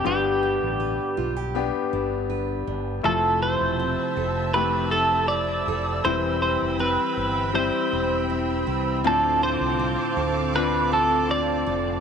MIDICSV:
0, 0, Header, 1, 6, 480
1, 0, Start_track
1, 0, Tempo, 750000
1, 30, Time_signature, 4, 2, 24, 8
1, 7681, End_track
2, 0, Start_track
2, 0, Title_t, "String section"
2, 0, Program_c, 0, 48
2, 1940, Note_on_c, 0, 76, 59
2, 1941, Note_on_c, 0, 88, 77
2, 1942, Note_on_c, 0, 60, 66
2, 1942, Note_on_c, 0, 81, 61
2, 3846, Note_off_c, 0, 76, 0
2, 3847, Note_off_c, 0, 60, 0
2, 3847, Note_off_c, 0, 81, 0
2, 3866, Note_on_c, 0, 60, 72
2, 3871, Note_on_c, 0, 83, 66
2, 3874, Note_on_c, 0, 79, 64
2, 5760, Note_off_c, 0, 88, 0
2, 5772, Note_off_c, 0, 83, 0
2, 5773, Note_off_c, 0, 79, 0
2, 5803, Note_on_c, 0, 77, 66
2, 5804, Note_on_c, 0, 86, 82
2, 5805, Note_on_c, 0, 81, 67
2, 7681, Note_off_c, 0, 60, 0
2, 7681, Note_off_c, 0, 77, 0
2, 7681, Note_off_c, 0, 81, 0
2, 7681, Note_off_c, 0, 86, 0
2, 7681, End_track
3, 0, Start_track
3, 0, Title_t, "Clean electric guitar"
3, 0, Program_c, 1, 27
3, 41, Note_on_c, 1, 67, 78
3, 1450, Note_off_c, 1, 67, 0
3, 1955, Note_on_c, 1, 69, 70
3, 2190, Note_off_c, 1, 69, 0
3, 2192, Note_on_c, 1, 72, 86
3, 2903, Note_off_c, 1, 72, 0
3, 2906, Note_on_c, 1, 71, 77
3, 3142, Note_off_c, 1, 71, 0
3, 3145, Note_on_c, 1, 69, 78
3, 3370, Note_off_c, 1, 69, 0
3, 3380, Note_on_c, 1, 74, 82
3, 3868, Note_off_c, 1, 74, 0
3, 3871, Note_on_c, 1, 72, 90
3, 4102, Note_off_c, 1, 72, 0
3, 4110, Note_on_c, 1, 72, 83
3, 4333, Note_off_c, 1, 72, 0
3, 4354, Note_on_c, 1, 71, 72
3, 4807, Note_off_c, 1, 71, 0
3, 4834, Note_on_c, 1, 72, 77
3, 5286, Note_off_c, 1, 72, 0
3, 5805, Note_on_c, 1, 69, 71
3, 6034, Note_off_c, 1, 69, 0
3, 6037, Note_on_c, 1, 72, 85
3, 6754, Note_off_c, 1, 72, 0
3, 6756, Note_on_c, 1, 71, 94
3, 6977, Note_off_c, 1, 71, 0
3, 6997, Note_on_c, 1, 69, 76
3, 7236, Note_off_c, 1, 69, 0
3, 7239, Note_on_c, 1, 74, 89
3, 7681, Note_off_c, 1, 74, 0
3, 7681, End_track
4, 0, Start_track
4, 0, Title_t, "Steel-string acoustic guitar"
4, 0, Program_c, 2, 25
4, 0, Note_on_c, 2, 62, 52
4, 0, Note_on_c, 2, 64, 53
4, 36, Note_on_c, 2, 55, 69
4, 40, Note_on_c, 2, 71, 62
4, 79, Note_off_c, 2, 64, 0
4, 271, Note_off_c, 2, 62, 0
4, 274, Note_on_c, 2, 62, 48
4, 503, Note_off_c, 2, 71, 0
4, 511, Note_on_c, 2, 71, 55
4, 750, Note_on_c, 2, 65, 56
4, 873, Note_off_c, 2, 65, 0
4, 873, Note_on_c, 2, 67, 49
4, 984, Note_off_c, 2, 71, 0
4, 992, Note_on_c, 2, 71, 48
4, 1227, Note_off_c, 2, 62, 0
4, 1234, Note_on_c, 2, 62, 49
4, 1462, Note_off_c, 2, 71, 0
4, 1470, Note_on_c, 2, 71, 54
4, 1704, Note_off_c, 2, 62, 0
4, 1712, Note_on_c, 2, 62, 49
4, 1946, Note_on_c, 2, 53, 71
4, 1953, Note_off_c, 2, 55, 0
4, 1998, Note_off_c, 2, 71, 0
4, 1999, Note_off_c, 2, 62, 0
4, 2000, Note_off_c, 2, 67, 0
4, 2190, Note_on_c, 2, 64, 48
4, 2429, Note_on_c, 2, 60, 51
4, 2667, Note_on_c, 2, 69, 56
4, 2905, Note_off_c, 2, 60, 0
4, 2908, Note_on_c, 2, 60, 45
4, 3140, Note_off_c, 2, 69, 0
4, 3148, Note_on_c, 2, 69, 63
4, 3391, Note_off_c, 2, 64, 0
4, 3394, Note_on_c, 2, 64, 53
4, 3629, Note_off_c, 2, 69, 0
4, 3636, Note_on_c, 2, 69, 59
4, 3868, Note_off_c, 2, 53, 0
4, 3872, Note_on_c, 2, 52, 70
4, 3921, Note_off_c, 2, 69, 0
4, 4111, Note_off_c, 2, 64, 0
4, 4114, Note_on_c, 2, 64, 50
4, 4345, Note_off_c, 2, 60, 0
4, 4348, Note_on_c, 2, 60, 53
4, 4829, Note_off_c, 2, 60, 0
4, 4832, Note_on_c, 2, 60, 50
4, 5303, Note_off_c, 2, 64, 0
4, 5310, Note_on_c, 2, 64, 55
4, 5548, Note_on_c, 2, 71, 61
4, 5785, Note_off_c, 2, 52, 0
4, 5787, Note_on_c, 2, 50, 80
4, 5837, Note_off_c, 2, 71, 0
4, 5838, Note_off_c, 2, 64, 0
4, 6032, Note_on_c, 2, 65, 49
4, 6266, Note_off_c, 2, 60, 0
4, 6268, Note_on_c, 2, 60, 55
4, 6508, Note_on_c, 2, 69, 57
4, 6742, Note_off_c, 2, 60, 0
4, 6744, Note_on_c, 2, 60, 52
4, 6980, Note_off_c, 2, 69, 0
4, 6987, Note_on_c, 2, 69, 59
4, 7218, Note_off_c, 2, 65, 0
4, 7225, Note_on_c, 2, 65, 59
4, 7457, Note_off_c, 2, 69, 0
4, 7465, Note_on_c, 2, 69, 61
4, 7681, Note_off_c, 2, 50, 0
4, 7681, Note_off_c, 2, 60, 0
4, 7681, Note_off_c, 2, 65, 0
4, 7681, Note_off_c, 2, 69, 0
4, 7681, End_track
5, 0, Start_track
5, 0, Title_t, "Grand piano"
5, 0, Program_c, 3, 0
5, 0, Control_c, 3, 64, 127
5, 23, Note_on_c, 3, 59, 60
5, 25, Note_on_c, 3, 50, 59
5, 28, Note_on_c, 3, 43, 55
5, 30, Note_on_c, 3, 62, 56
5, 32, Note_on_c, 3, 67, 68
5, 37, Control_c, 3, 64, 0
5, 151, Control_c, 3, 64, 127
5, 722, Note_off_c, 3, 50, 0
5, 723, Note_off_c, 3, 43, 0
5, 939, Note_off_c, 3, 59, 0
5, 942, Note_off_c, 3, 62, 0
5, 943, Note_off_c, 3, 67, 0
5, 989, Note_on_c, 3, 59, 69
5, 996, Note_on_c, 3, 62, 64
5, 998, Note_on_c, 3, 67, 81
5, 1902, Note_off_c, 3, 59, 0
5, 1905, Note_off_c, 3, 62, 0
5, 1906, Note_off_c, 3, 67, 0
5, 1942, Note_on_c, 3, 57, 60
5, 1944, Note_on_c, 3, 64, 58
5, 1946, Note_on_c, 3, 48, 56
5, 1950, Note_on_c, 3, 65, 70
5, 1957, Control_c, 3, 64, 0
5, 2073, Control_c, 3, 64, 127
5, 2642, Note_off_c, 3, 48, 0
5, 2858, Note_off_c, 3, 57, 0
5, 2859, Note_off_c, 3, 64, 0
5, 2862, Note_off_c, 3, 65, 0
5, 2908, Note_on_c, 3, 57, 65
5, 2912, Note_on_c, 3, 64, 55
5, 2916, Note_on_c, 3, 67, 65
5, 3821, Note_off_c, 3, 57, 0
5, 3823, Note_off_c, 3, 64, 0
5, 3825, Note_off_c, 3, 67, 0
5, 3871, Note_on_c, 3, 55, 63
5, 3875, Note_on_c, 3, 52, 53
5, 3875, Note_on_c, 3, 60, 60
5, 3876, Note_on_c, 3, 64, 71
5, 3879, Control_c, 3, 64, 0
5, 3992, Control_c, 3, 64, 127
5, 4567, Note_off_c, 3, 52, 0
5, 4783, Note_off_c, 3, 55, 0
5, 4785, Note_off_c, 3, 60, 0
5, 4785, Note_off_c, 3, 64, 0
5, 4822, Note_on_c, 3, 55, 65
5, 4829, Note_on_c, 3, 64, 66
5, 4831, Note_on_c, 3, 60, 57
5, 5738, Note_off_c, 3, 55, 0
5, 5741, Note_off_c, 3, 64, 0
5, 5742, Note_off_c, 3, 60, 0
5, 5789, Note_on_c, 3, 60, 67
5, 5791, Note_on_c, 3, 45, 62
5, 5792, Note_on_c, 3, 62, 59
5, 5793, Note_on_c, 3, 65, 71
5, 5799, Control_c, 3, 64, 0
5, 5912, Control_c, 3, 64, 127
5, 6485, Note_off_c, 3, 45, 0
5, 6702, Note_off_c, 3, 60, 0
5, 6703, Note_off_c, 3, 62, 0
5, 6703, Note_off_c, 3, 65, 0
5, 6749, Note_on_c, 3, 60, 64
5, 6754, Note_on_c, 3, 62, 61
5, 6757, Note_on_c, 3, 65, 77
5, 7662, Note_off_c, 3, 60, 0
5, 7664, Note_off_c, 3, 62, 0
5, 7666, Note_off_c, 3, 65, 0
5, 7681, End_track
6, 0, Start_track
6, 0, Title_t, "Fretless electric bass"
6, 0, Program_c, 4, 35
6, 34, Note_on_c, 4, 31, 91
6, 367, Note_off_c, 4, 31, 0
6, 400, Note_on_c, 4, 33, 63
6, 619, Note_off_c, 4, 33, 0
6, 754, Note_on_c, 4, 35, 71
6, 1087, Note_off_c, 4, 35, 0
6, 1236, Note_on_c, 4, 31, 69
6, 1687, Note_off_c, 4, 31, 0
6, 1712, Note_on_c, 4, 31, 75
6, 1934, Note_off_c, 4, 31, 0
6, 1951, Note_on_c, 4, 29, 98
6, 2285, Note_off_c, 4, 29, 0
6, 2308, Note_on_c, 4, 28, 67
6, 2532, Note_off_c, 4, 28, 0
6, 2668, Note_on_c, 4, 29, 81
6, 3603, Note_off_c, 4, 29, 0
6, 3631, Note_on_c, 4, 29, 89
6, 3854, Note_off_c, 4, 29, 0
6, 3873, Note_on_c, 4, 28, 101
6, 4207, Note_off_c, 4, 28, 0
6, 4238, Note_on_c, 4, 29, 81
6, 4458, Note_off_c, 4, 29, 0
6, 4590, Note_on_c, 4, 31, 84
6, 4925, Note_off_c, 4, 31, 0
6, 5074, Note_on_c, 4, 28, 76
6, 5526, Note_off_c, 4, 28, 0
6, 5553, Note_on_c, 4, 36, 78
6, 5789, Note_off_c, 4, 36, 0
6, 5789, Note_on_c, 4, 38, 84
6, 6124, Note_off_c, 4, 38, 0
6, 6149, Note_on_c, 4, 36, 77
6, 6373, Note_off_c, 4, 36, 0
6, 6506, Note_on_c, 4, 38, 80
6, 7443, Note_off_c, 4, 38, 0
6, 7469, Note_on_c, 4, 29, 73
6, 7681, Note_off_c, 4, 29, 0
6, 7681, End_track
0, 0, End_of_file